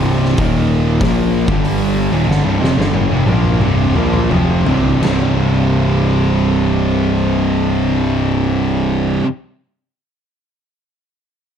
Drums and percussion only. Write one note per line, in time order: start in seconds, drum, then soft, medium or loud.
0.25 snare soft
0.38 kick loud
0.38 open hi-hat medium
1.01 kick loud
1.01 snare loud
1.01 open hi-hat medium
1.48 kick loud
1.65 open hi-hat medium
2.31 snare medium
2.64 snare medium
2.81 snare medium
2.95 high tom medium
3.28 high tom loud
3.44 mid tom medium
3.61 mid tom medium
3.96 mid tom medium
4.13 mid tom medium
4.31 mid tom loud
4.67 floor tom loud
4.84 floor tom medium
5.03 snare loud
5.03 china medium